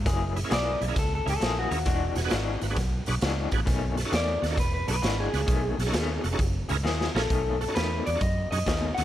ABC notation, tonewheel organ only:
X:1
M:4/4
L:1/16
Q:"Swing" 1/4=133
K:Bmix
V:1 name="Tonewheel organ"
z2 [EG] [^A,CEG] z2 [EG] [A,CEG] z2 [A,CEG] z3 [A,CEG] z | z2 [FG] [B,=DFG] z2 [FB] [B,DFG] z2 [B,DFG] z3 [B,DFG] z | z2 [FA] [CDFA] z2 [FA] [CDFA] z2 [B,=DFG] z3 [B,DFG] z | z2 [FA] [CDFA] z2 [FA] [CDFA] z2 [CEG^A] z3 [CEGA] z |
z2 [FA] [CDFA] z2 [FG] [CDFA] z2 [CDFG] z3 [CDFA] z |]